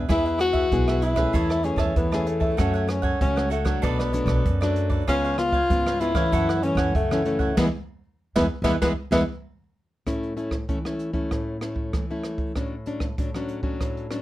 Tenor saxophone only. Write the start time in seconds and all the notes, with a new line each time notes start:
0.11 E4
0.40 F#4
1.02 E4
1.65 C#4
1.97 B3
2.27 A3
2.89 C#4
3.22 C#4
3.51 A3
3.84 B3
5.08 C#4
5.38 F4
6.00 E4
6.63 C#4
6.95 A3
7.57 B3
8.36 B3
8.64 B3
8.81 B3
9.12 B3